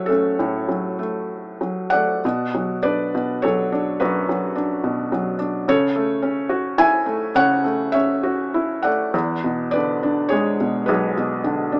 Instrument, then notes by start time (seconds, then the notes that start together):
felt piano
Already playing: A2 F#3 A3 C#5 E5 F#5
0.06 A3 C#4 A4
0.39 A2
0.69 F#3
0.99 A3
1.61 F#3
1.90 A3 D5 F#5
2.25 B2
2.55 F#3
2.83 D4 B4 D5
3.15 B2
3.42 F#3 A4 C#5
3.72 D4
4.00 F#2 F#4 B4
4.29 F#3
4.56 D4
4.84 B2
5.12 F#3
5.39 D4
5.68 C#3 A4 C#5
5.96 A3
6.22 C#4
6.49 F#4
6.78 E4 E5 G#5
7.06 A3
7.35 C#3 C#5 F#5
7.64 A3
7.92 C#4 C#5 E5
8.23 F#4
8.54 E4
8.83 A3 D5 F#5
9.14 E2
9.44 B2
9.71 D3 B4 D5
10.03 D4
10.29 G#3 G#4 C#5
10.60 B2
10.86 B1 G#4 B4
11.17 B2
11.44 D3
11.72 D4